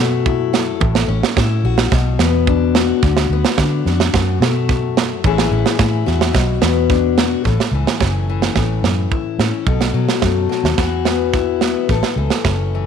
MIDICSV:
0, 0, Header, 1, 5, 480
1, 0, Start_track
1, 0, Key_signature, 3, "major"
1, 0, Tempo, 553506
1, 709, Time_signature, 4, 2, 24, 8
1, 11156, End_track
2, 0, Start_track
2, 0, Title_t, "Steel-string acoustic guitar"
2, 0, Program_c, 0, 25
2, 0, Note_on_c, 0, 42, 77
2, 0, Note_on_c, 0, 57, 56
2, 0, Note_on_c, 0, 66, 64
2, 235, Note_on_c, 0, 64, 58
2, 458, Note_off_c, 0, 66, 0
2, 462, Note_on_c, 0, 69, 60
2, 677, Note_off_c, 0, 69, 0
2, 684, Note_off_c, 0, 64, 0
2, 694, Note_off_c, 0, 42, 0
2, 697, Note_on_c, 0, 45, 66
2, 936, Note_off_c, 0, 57, 0
2, 939, Note_on_c, 0, 61, 61
2, 1185, Note_on_c, 0, 64, 64
2, 1428, Note_on_c, 0, 66, 62
2, 1634, Note_off_c, 0, 45, 0
2, 1635, Note_off_c, 0, 61, 0
2, 1638, Note_off_c, 0, 64, 0
2, 1657, Note_on_c, 0, 47, 73
2, 1902, Note_on_c, 0, 59, 58
2, 2152, Note_on_c, 0, 62, 56
2, 2388, Note_off_c, 0, 66, 0
2, 2401, Note_on_c, 0, 66, 65
2, 2596, Note_off_c, 0, 59, 0
2, 2601, Note_off_c, 0, 62, 0
2, 2622, Note_off_c, 0, 47, 0
2, 2633, Note_on_c, 0, 50, 69
2, 2884, Note_on_c, 0, 59, 62
2, 3120, Note_on_c, 0, 62, 68
2, 3353, Note_off_c, 0, 66, 0
2, 3366, Note_on_c, 0, 66, 63
2, 3560, Note_off_c, 0, 50, 0
2, 3564, Note_off_c, 0, 62, 0
2, 3566, Note_off_c, 0, 59, 0
2, 3602, Note_on_c, 0, 42, 75
2, 3839, Note_on_c, 0, 57, 58
2, 4311, Note_off_c, 0, 66, 0
2, 4540, Note_off_c, 0, 42, 0
2, 4544, Note_on_c, 0, 45, 74
2, 4551, Note_off_c, 0, 57, 0
2, 4552, Note_on_c, 0, 52, 66
2, 4564, Note_on_c, 0, 61, 67
2, 4566, Note_on_c, 0, 64, 60
2, 4574, Note_on_c, 0, 68, 59
2, 4774, Note_off_c, 0, 61, 0
2, 4785, Note_on_c, 0, 61, 61
2, 5007, Note_off_c, 0, 64, 0
2, 5017, Note_on_c, 0, 64, 64
2, 5254, Note_off_c, 0, 68, 0
2, 5257, Note_on_c, 0, 66, 63
2, 5471, Note_off_c, 0, 64, 0
2, 5474, Note_off_c, 0, 45, 0
2, 5475, Note_off_c, 0, 61, 0
2, 5491, Note_on_c, 0, 47, 70
2, 5507, Note_off_c, 0, 52, 0
2, 5735, Note_on_c, 0, 59, 62
2, 5979, Note_on_c, 0, 62, 60
2, 6219, Note_off_c, 0, 66, 0
2, 6232, Note_on_c, 0, 66, 61
2, 6430, Note_off_c, 0, 59, 0
2, 6432, Note_off_c, 0, 62, 0
2, 6453, Note_on_c, 0, 45, 65
2, 6457, Note_off_c, 0, 47, 0
2, 6462, Note_off_c, 0, 66, 0
2, 6465, Note_on_c, 0, 69, 59
2, 6718, Note_on_c, 0, 52, 55
2, 6952, Note_on_c, 0, 61, 56
2, 7183, Note_off_c, 0, 52, 0
2, 7193, Note_on_c, 0, 52, 58
2, 7416, Note_off_c, 0, 45, 0
2, 7427, Note_on_c, 0, 45, 57
2, 7665, Note_off_c, 0, 69, 0
2, 7916, Note_on_c, 0, 64, 50
2, 8142, Note_off_c, 0, 61, 0
2, 8152, Note_on_c, 0, 61, 55
2, 8358, Note_off_c, 0, 45, 0
2, 8360, Note_off_c, 0, 61, 0
2, 8362, Note_off_c, 0, 64, 0
2, 8386, Note_on_c, 0, 47, 66
2, 8390, Note_off_c, 0, 52, 0
2, 8393, Note_on_c, 0, 69, 64
2, 8620, Note_on_c, 0, 54, 57
2, 8883, Note_on_c, 0, 57, 53
2, 9089, Note_off_c, 0, 54, 0
2, 9099, Note_on_c, 0, 54, 61
2, 9315, Note_off_c, 0, 54, 0
2, 9322, Note_off_c, 0, 69, 0
2, 9346, Note_on_c, 0, 52, 69
2, 9348, Note_off_c, 0, 47, 0
2, 9355, Note_off_c, 0, 57, 0
2, 9356, Note_on_c, 0, 66, 59
2, 9596, Note_on_c, 0, 59, 61
2, 9837, Note_on_c, 0, 64, 56
2, 10071, Note_off_c, 0, 59, 0
2, 10074, Note_on_c, 0, 59, 59
2, 10285, Note_off_c, 0, 64, 0
2, 10313, Note_off_c, 0, 66, 0
2, 10318, Note_on_c, 0, 45, 65
2, 10323, Note_on_c, 0, 69, 63
2, 10344, Note_off_c, 0, 59, 0
2, 10546, Note_off_c, 0, 52, 0
2, 10557, Note_on_c, 0, 52, 60
2, 10809, Note_on_c, 0, 61, 57
2, 11034, Note_off_c, 0, 52, 0
2, 11054, Note_on_c, 0, 52, 56
2, 11156, Note_off_c, 0, 45, 0
2, 11156, Note_off_c, 0, 52, 0
2, 11156, Note_off_c, 0, 61, 0
2, 11156, Note_off_c, 0, 69, 0
2, 11156, End_track
3, 0, Start_track
3, 0, Title_t, "Fingered electric bass"
3, 0, Program_c, 1, 33
3, 0, Note_on_c, 1, 47, 91
3, 606, Note_off_c, 1, 47, 0
3, 700, Note_on_c, 1, 33, 92
3, 912, Note_off_c, 1, 33, 0
3, 936, Note_on_c, 1, 33, 87
3, 1046, Note_off_c, 1, 33, 0
3, 1189, Note_on_c, 1, 45, 77
3, 1397, Note_off_c, 1, 45, 0
3, 1418, Note_on_c, 1, 34, 78
3, 1630, Note_off_c, 1, 34, 0
3, 1664, Note_on_c, 1, 35, 83
3, 1874, Note_off_c, 1, 35, 0
3, 1901, Note_on_c, 1, 40, 89
3, 2527, Note_off_c, 1, 40, 0
3, 2626, Note_on_c, 1, 38, 102
3, 2835, Note_off_c, 1, 38, 0
3, 2858, Note_on_c, 1, 38, 90
3, 2966, Note_off_c, 1, 38, 0
3, 3103, Note_on_c, 1, 50, 82
3, 3312, Note_off_c, 1, 50, 0
3, 3343, Note_on_c, 1, 41, 81
3, 3552, Note_off_c, 1, 41, 0
3, 3586, Note_on_c, 1, 42, 97
3, 3793, Note_off_c, 1, 42, 0
3, 3816, Note_on_c, 1, 47, 93
3, 4443, Note_off_c, 1, 47, 0
3, 4547, Note_on_c, 1, 33, 107
3, 4753, Note_off_c, 1, 33, 0
3, 4781, Note_on_c, 1, 33, 93
3, 4887, Note_off_c, 1, 33, 0
3, 5024, Note_on_c, 1, 45, 85
3, 5231, Note_off_c, 1, 45, 0
3, 5264, Note_on_c, 1, 40, 94
3, 5471, Note_off_c, 1, 40, 0
3, 5501, Note_on_c, 1, 35, 93
3, 5710, Note_off_c, 1, 35, 0
3, 5742, Note_on_c, 1, 40, 92
3, 6366, Note_off_c, 1, 40, 0
3, 6460, Note_on_c, 1, 33, 78
3, 6566, Note_off_c, 1, 33, 0
3, 6691, Note_on_c, 1, 37, 84
3, 6800, Note_off_c, 1, 37, 0
3, 6938, Note_on_c, 1, 30, 82
3, 7356, Note_off_c, 1, 30, 0
3, 7416, Note_on_c, 1, 33, 81
3, 7627, Note_off_c, 1, 33, 0
3, 7655, Note_on_c, 1, 42, 82
3, 7867, Note_off_c, 1, 42, 0
3, 8140, Note_on_c, 1, 45, 79
3, 8247, Note_off_c, 1, 45, 0
3, 8382, Note_on_c, 1, 35, 83
3, 8592, Note_off_c, 1, 35, 0
3, 8618, Note_on_c, 1, 47, 90
3, 8726, Note_off_c, 1, 47, 0
3, 8863, Note_on_c, 1, 42, 71
3, 9073, Note_off_c, 1, 42, 0
3, 9224, Note_on_c, 1, 39, 88
3, 9329, Note_off_c, 1, 39, 0
3, 9349, Note_on_c, 1, 40, 74
3, 10181, Note_off_c, 1, 40, 0
3, 10311, Note_on_c, 1, 33, 86
3, 10415, Note_off_c, 1, 33, 0
3, 10547, Note_on_c, 1, 37, 81
3, 10653, Note_off_c, 1, 37, 0
3, 10795, Note_on_c, 1, 30, 75
3, 11156, Note_off_c, 1, 30, 0
3, 11156, End_track
4, 0, Start_track
4, 0, Title_t, "Muted steel-string acoustic guitar strokes"
4, 4082, Note_on_c, 9, 29, 56
4, 4169, Note_off_c, 9, 29, 0
4, 4314, Note_on_c, 9, 29, 64
4, 4401, Note_off_c, 9, 29, 0
4, 7680, Note_on_c, 9, 29, 54
4, 7767, Note_off_c, 9, 29, 0
4, 11156, End_track
5, 0, Start_track
5, 0, Title_t, "Drums"
5, 224, Note_on_c, 9, 36, 87
5, 311, Note_off_c, 9, 36, 0
5, 467, Note_on_c, 9, 38, 69
5, 553, Note_off_c, 9, 38, 0
5, 705, Note_on_c, 9, 36, 86
5, 791, Note_off_c, 9, 36, 0
5, 825, Note_on_c, 9, 38, 66
5, 912, Note_off_c, 9, 38, 0
5, 1070, Note_on_c, 9, 38, 76
5, 1157, Note_off_c, 9, 38, 0
5, 1186, Note_on_c, 9, 36, 89
5, 1190, Note_on_c, 9, 38, 77
5, 1273, Note_off_c, 9, 36, 0
5, 1277, Note_off_c, 9, 38, 0
5, 1542, Note_on_c, 9, 38, 78
5, 1628, Note_off_c, 9, 38, 0
5, 1664, Note_on_c, 9, 36, 96
5, 1667, Note_on_c, 9, 38, 67
5, 1751, Note_off_c, 9, 36, 0
5, 1754, Note_off_c, 9, 38, 0
5, 1901, Note_on_c, 9, 38, 71
5, 1988, Note_off_c, 9, 38, 0
5, 2145, Note_on_c, 9, 36, 90
5, 2232, Note_off_c, 9, 36, 0
5, 2384, Note_on_c, 9, 38, 76
5, 2471, Note_off_c, 9, 38, 0
5, 2626, Note_on_c, 9, 36, 87
5, 2626, Note_on_c, 9, 38, 28
5, 2712, Note_off_c, 9, 36, 0
5, 2712, Note_off_c, 9, 38, 0
5, 2746, Note_on_c, 9, 38, 68
5, 2832, Note_off_c, 9, 38, 0
5, 2988, Note_on_c, 9, 38, 70
5, 3075, Note_off_c, 9, 38, 0
5, 3102, Note_on_c, 9, 38, 77
5, 3105, Note_on_c, 9, 36, 94
5, 3189, Note_off_c, 9, 38, 0
5, 3192, Note_off_c, 9, 36, 0
5, 3351, Note_on_c, 9, 38, 28
5, 3437, Note_off_c, 9, 38, 0
5, 3469, Note_on_c, 9, 38, 71
5, 3556, Note_off_c, 9, 38, 0
5, 3588, Note_on_c, 9, 36, 89
5, 3591, Note_on_c, 9, 38, 75
5, 3674, Note_off_c, 9, 36, 0
5, 3678, Note_off_c, 9, 38, 0
5, 3835, Note_on_c, 9, 38, 79
5, 3922, Note_off_c, 9, 38, 0
5, 4068, Note_on_c, 9, 36, 88
5, 4073, Note_on_c, 9, 38, 24
5, 4155, Note_off_c, 9, 36, 0
5, 4160, Note_off_c, 9, 38, 0
5, 4312, Note_on_c, 9, 38, 74
5, 4399, Note_off_c, 9, 38, 0
5, 4546, Note_on_c, 9, 36, 89
5, 4632, Note_off_c, 9, 36, 0
5, 4668, Note_on_c, 9, 38, 69
5, 4755, Note_off_c, 9, 38, 0
5, 4906, Note_on_c, 9, 38, 69
5, 4993, Note_off_c, 9, 38, 0
5, 5022, Note_on_c, 9, 36, 102
5, 5023, Note_on_c, 9, 38, 76
5, 5109, Note_off_c, 9, 36, 0
5, 5110, Note_off_c, 9, 38, 0
5, 5265, Note_on_c, 9, 38, 28
5, 5351, Note_off_c, 9, 38, 0
5, 5386, Note_on_c, 9, 38, 71
5, 5473, Note_off_c, 9, 38, 0
5, 5503, Note_on_c, 9, 36, 88
5, 5503, Note_on_c, 9, 38, 67
5, 5590, Note_off_c, 9, 36, 0
5, 5590, Note_off_c, 9, 38, 0
5, 5739, Note_on_c, 9, 38, 74
5, 5825, Note_off_c, 9, 38, 0
5, 5981, Note_on_c, 9, 36, 87
5, 5981, Note_on_c, 9, 38, 27
5, 6068, Note_off_c, 9, 36, 0
5, 6068, Note_off_c, 9, 38, 0
5, 6224, Note_on_c, 9, 38, 78
5, 6310, Note_off_c, 9, 38, 0
5, 6463, Note_on_c, 9, 36, 71
5, 6468, Note_on_c, 9, 38, 22
5, 6549, Note_off_c, 9, 36, 0
5, 6554, Note_off_c, 9, 38, 0
5, 6593, Note_on_c, 9, 38, 61
5, 6679, Note_off_c, 9, 38, 0
5, 6828, Note_on_c, 9, 38, 66
5, 6915, Note_off_c, 9, 38, 0
5, 6942, Note_on_c, 9, 36, 91
5, 6945, Note_on_c, 9, 38, 69
5, 7029, Note_off_c, 9, 36, 0
5, 7032, Note_off_c, 9, 38, 0
5, 7303, Note_on_c, 9, 38, 65
5, 7390, Note_off_c, 9, 38, 0
5, 7419, Note_on_c, 9, 38, 60
5, 7420, Note_on_c, 9, 36, 83
5, 7506, Note_off_c, 9, 38, 0
5, 7507, Note_off_c, 9, 36, 0
5, 7666, Note_on_c, 9, 38, 71
5, 7753, Note_off_c, 9, 38, 0
5, 7905, Note_on_c, 9, 36, 80
5, 7992, Note_off_c, 9, 36, 0
5, 8147, Note_on_c, 9, 38, 66
5, 8234, Note_off_c, 9, 38, 0
5, 8383, Note_on_c, 9, 36, 77
5, 8469, Note_off_c, 9, 36, 0
5, 8504, Note_on_c, 9, 38, 57
5, 8591, Note_off_c, 9, 38, 0
5, 8746, Note_on_c, 9, 38, 62
5, 8833, Note_off_c, 9, 38, 0
5, 8863, Note_on_c, 9, 38, 69
5, 8866, Note_on_c, 9, 36, 85
5, 8949, Note_off_c, 9, 38, 0
5, 8953, Note_off_c, 9, 36, 0
5, 9118, Note_on_c, 9, 38, 25
5, 9204, Note_off_c, 9, 38, 0
5, 9236, Note_on_c, 9, 38, 61
5, 9323, Note_off_c, 9, 38, 0
5, 9347, Note_on_c, 9, 38, 63
5, 9349, Note_on_c, 9, 36, 89
5, 9434, Note_off_c, 9, 38, 0
5, 9435, Note_off_c, 9, 36, 0
5, 9586, Note_on_c, 9, 38, 67
5, 9672, Note_off_c, 9, 38, 0
5, 9826, Note_on_c, 9, 38, 25
5, 9830, Note_on_c, 9, 36, 85
5, 9913, Note_off_c, 9, 38, 0
5, 9917, Note_off_c, 9, 36, 0
5, 10069, Note_on_c, 9, 38, 64
5, 10155, Note_off_c, 9, 38, 0
5, 10311, Note_on_c, 9, 38, 23
5, 10312, Note_on_c, 9, 36, 77
5, 10398, Note_off_c, 9, 38, 0
5, 10399, Note_off_c, 9, 36, 0
5, 10431, Note_on_c, 9, 38, 57
5, 10518, Note_off_c, 9, 38, 0
5, 10670, Note_on_c, 9, 38, 65
5, 10757, Note_off_c, 9, 38, 0
5, 10794, Note_on_c, 9, 36, 81
5, 10795, Note_on_c, 9, 38, 72
5, 10880, Note_off_c, 9, 36, 0
5, 10881, Note_off_c, 9, 38, 0
5, 11156, End_track
0, 0, End_of_file